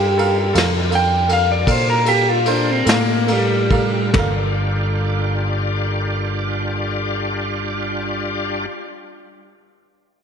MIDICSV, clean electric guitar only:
0, 0, Header, 1, 2, 480
1, 0, Start_track
1, 0, Key_signature, -2, "minor"
1, 0, Tempo, 740741
1, 1089, Tempo, 804290
1, 2049, Tempo, 890208
1, 2516, Time_signature, 12, 3, 24, 8
1, 5792, End_track
2, 0, Start_track
2, 0, Title_t, "Clean electric guitar"
2, 0, Program_c, 0, 27
2, 0, Note_on_c, 0, 67, 96
2, 344, Note_off_c, 0, 67, 0
2, 617, Note_on_c, 0, 79, 101
2, 844, Note_off_c, 0, 79, 0
2, 862, Note_on_c, 0, 77, 84
2, 971, Note_off_c, 0, 77, 0
2, 983, Note_on_c, 0, 74, 83
2, 1106, Note_off_c, 0, 74, 0
2, 1106, Note_on_c, 0, 72, 87
2, 1209, Note_off_c, 0, 72, 0
2, 1218, Note_on_c, 0, 70, 79
2, 1324, Note_off_c, 0, 70, 0
2, 1330, Note_on_c, 0, 67, 91
2, 1452, Note_off_c, 0, 67, 0
2, 1452, Note_on_c, 0, 65, 87
2, 1576, Note_off_c, 0, 65, 0
2, 1576, Note_on_c, 0, 62, 78
2, 1702, Note_off_c, 0, 62, 0
2, 1702, Note_on_c, 0, 60, 83
2, 1809, Note_off_c, 0, 60, 0
2, 1825, Note_on_c, 0, 58, 87
2, 2053, Note_off_c, 0, 58, 0
2, 2067, Note_on_c, 0, 55, 94
2, 2512, Note_off_c, 0, 55, 0
2, 5792, End_track
0, 0, End_of_file